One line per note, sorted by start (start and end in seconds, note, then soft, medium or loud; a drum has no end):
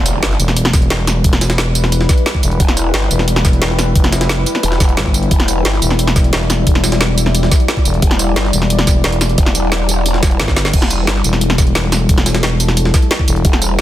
0.00 0.21 E1 medium
0.00 13.81 G3 medium
0.00 13.81 E4 medium
0.00 5.29 B4 medium
0.00 impact medium
0.06 closed hi-hat medium
0.06 tambourine medium
0.23 0.38 G1 loud
0.23 snare loud
0.23 closed hi-hat medium
0.23 closed hi-hat loud
0.31 snare medium
0.40 0.89 E1 medium
0.40 closed hi-hat medium
0.40 tambourine medium
0.48 snare soft
0.56 closed hi-hat medium
0.56 closed hi-hat loud
0.65 snare medium
0.73 kick loud
0.73 snare soft
0.73 closed hi-hat medium
0.73 tambourine medium
0.82 closed hi-hat soft
0.90 1.23 E1 medium
0.90 snare loud
0.90 closed hi-hat medium
0.90 closed hi-hat loud
0.99 snare soft
1.07 snare medium
1.07 closed hi-hat medium
1.07 tambourine medium
1.24 2.08 E1 loud
1.24 kick loud
1.24 closed hi-hat medium
1.33 snare soft
1.33 snare medium
1.41 snare loud
1.41 closed hi-hat medium
1.41 tambourine medium
1.50 snare loud
1.50 closed hi-hat medium
1.58 snare loud
1.58 closed hi-hat medium
1.58 closed hi-hat loud
1.75 closed hi-hat medium
1.75 tambourine medium
1.84 snare soft
1.92 closed hi-hat medium
1.92 closed hi-hat loud
1.92 tambourine soft
2.01 snare medium
2.09 kick loud
2.09 snare soft
2.09 closed hi-hat medium
2.09 tambourine medium
2.18 closed hi-hat soft
2.26 snare loud
2.26 closed hi-hat medium
2.26 closed hi-hat loud
2.35 kick medium
2.35 snare soft
2.43 2.59 E1 loud
2.43 closed hi-hat medium
2.43 tambourine medium
2.51 closed hi-hat soft
2.60 2.93 E1 loud
2.60 kick loud
2.60 closed hi-hat medium
2.68 snare soft
2.77 closed hi-hat medium
2.77 tambourine medium
2.94 3.09 G1 loud
2.94 snare loud
2.94 closed hi-hat medium
3.02 snare medium
3.11 3.60 E1 loud
3.11 closed hi-hat medium
3.11 tambourine medium
3.19 snare soft
3.28 closed hi-hat loud
3.28 closed hi-hat medium
3.36 snare medium
3.45 kick loud
3.45 snare soft
3.45 closed hi-hat medium
3.45 tambourine medium
3.53 closed hi-hat soft
3.62 3.94 E1 loud
3.62 snare loud
3.62 closed hi-hat medium
3.70 snare soft
3.79 snare medium
3.79 closed hi-hat medium
3.79 tambourine medium
3.95 4.45 F1 loud
3.95 kick loud
3.95 closed hi-hat medium
4.04 snare soft
4.12 snare loud
4.12 closed hi-hat medium
4.12 tambourine medium
4.21 snare loud
4.21 closed hi-hat medium
4.29 snare loud
4.29 closed hi-hat medium
4.46 closed hi-hat medium
4.46 tambourine medium
4.55 snare soft
4.63 4.96 E1 loud
4.63 closed hi-hat medium
4.63 tambourine soft
4.72 snare medium
4.80 kick loud
4.80 snare soft
4.80 closed hi-hat medium
4.80 tambourine medium
4.89 closed hi-hat soft
4.97 5.30 G1 loud
4.97 snare loud
4.97 closed hi-hat medium
5.06 kick medium
5.06 snare soft
5.14 closed hi-hat medium
5.14 tambourine medium
5.23 closed hi-hat soft
5.31 5.64 E1 medium
5.31 10.71 D5 medium
5.31 kick loud
5.31 closed hi-hat medium
5.40 snare soft
5.48 closed hi-hat medium
5.48 tambourine medium
5.65 5.81 G1 medium
5.65 snare loud
5.65 closed hi-hat medium
5.74 snare medium
5.82 6.32 E1 loud
5.82 closed hi-hat medium
5.82 tambourine medium
5.90 snare soft
5.99 closed hi-hat medium
6.07 snare medium
6.16 kick loud
6.16 snare soft
6.16 closed hi-hat medium
6.16 tambourine medium
6.24 closed hi-hat soft
6.33 6.65 E1 loud
6.33 snare loud
6.33 closed hi-hat medium
6.41 snare soft
6.50 snare soft
6.50 closed hi-hat medium
6.50 tambourine medium
6.67 7.50 E1 loud
6.67 kick loud
6.67 closed hi-hat medium
6.75 snare soft
6.84 snare loud
6.84 closed hi-hat medium
6.84 tambourine medium
6.92 snare loud
6.92 closed hi-hat medium
7.01 snare loud
7.01 closed hi-hat medium
7.18 closed hi-hat medium
7.18 tambourine medium
7.26 snare soft
7.35 closed hi-hat medium
7.35 closed hi-hat loud
7.35 tambourine soft
7.43 snare medium
7.51 kick loud
7.51 snare soft
7.51 closed hi-hat medium
7.51 tambourine medium
7.60 closed hi-hat soft
7.68 snare loud
7.68 closed hi-hat medium
7.77 kick medium
7.77 snare soft
7.85 8.01 E1 loud
7.85 closed hi-hat medium
7.85 tambourine medium
7.94 closed hi-hat soft
8.02 8.35 E1 medium
8.02 kick loud
8.02 closed hi-hat medium
8.11 snare soft
8.19 closed hi-hat medium
8.19 tambourine medium
8.36 8.52 G1 loud
8.36 snare loud
8.36 closed hi-hat medium
8.45 snare medium
8.53 9.03 E1 loud
8.53 closed hi-hat medium
8.53 tambourine medium
8.62 snare soft
8.70 closed hi-hat loud
8.70 closed hi-hat medium
8.79 snare medium
8.87 kick loud
8.87 snare soft
8.87 closed hi-hat medium
8.87 tambourine medium
9.04 9.37 E1 loud
9.04 snare loud
9.04 closed hi-hat medium
9.12 closed hi-hat medium
9.21 snare soft
9.21 closed hi-hat medium
9.21 tambourine medium
9.29 closed hi-hat medium
9.38 10.21 E1 loud
9.38 kick loud
9.38 closed hi-hat medium
9.38 closed hi-hat loud
9.46 snare soft
9.55 closed hi-hat medium
9.55 tambourine medium
9.72 snare loud
9.72 closed hi-hat loud
9.72 closed hi-hat medium
9.89 closed hi-hat medium
9.89 tambourine medium
10.06 closed hi-hat medium
10.06 closed hi-hat loud
10.06 tambourine soft
10.14 snare medium
10.23 10.38 E1 loud
10.23 kick loud
10.23 snare loud
10.23 snare soft
10.23 closed hi-hat medium
10.23 tambourine medium
10.31 closed hi-hat soft
10.40 10.72 G1 medium
10.40 snare loud
10.40 closed hi-hat loud
10.40 closed hi-hat medium
10.48 kick medium
10.48 snare medium
10.48 snare soft
10.56 snare loud
10.56 snare medium
10.56 closed hi-hat medium
10.56 tambourine medium
10.65 snare medium
10.65 closed hi-hat soft
10.65 tambourine soft
10.73 11.06 E1 medium
10.73 13.44 A4 medium
10.73 kick loud
10.73 closed hi-hat medium
10.73 closed hi-hat loud
10.73 crash medium
10.82 snare medium
10.90 closed hi-hat medium
10.90 tambourine medium
11.07 11.23 G1 loud
11.07 snare loud
11.07 closed hi-hat medium
11.07 closed hi-hat loud
11.16 snare medium
11.24 11.74 E1 loud
11.24 closed hi-hat medium
11.24 tambourine medium
11.33 snare soft
11.41 closed hi-hat medium
11.41 closed hi-hat loud
11.50 snare medium
11.58 kick loud
11.58 snare soft
11.58 closed hi-hat medium
11.58 tambourine medium
11.67 closed hi-hat soft
11.75 12.08 E1 loud
11.75 snare loud
11.75 closed hi-hat medium
11.75 closed hi-hat loud
11.84 snare soft
11.92 snare soft
11.92 closed hi-hat medium
11.92 tambourine medium
12.09 12.93 E1 loud
12.09 kick loud
12.09 closed hi-hat medium
12.18 snare soft
12.26 snare loud
12.26 closed hi-hat medium
12.26 tambourine medium
12.35 snare loud
12.35 closed hi-hat medium
12.43 snare loud
12.43 closed hi-hat medium
12.60 closed hi-hat medium
12.60 tambourine medium
12.68 snare soft
12.77 closed hi-hat medium
12.77 tambourine soft
12.85 snare medium
12.94 kick loud
12.94 snare soft
12.94 closed hi-hat medium
12.94 tambourine medium
13.02 closed hi-hat soft
13.11 snare loud
13.11 closed hi-hat medium
13.19 kick medium
13.19 snare soft
13.28 13.43 E1 loud
13.28 closed hi-hat medium
13.28 tambourine medium
13.36 closed hi-hat soft
13.45 13.77 E1 loud
13.45 13.81 G4 medium
13.45 kick loud
13.45 closed hi-hat medium
13.53 snare medium
13.62 closed hi-hat medium
13.62 tambourine medium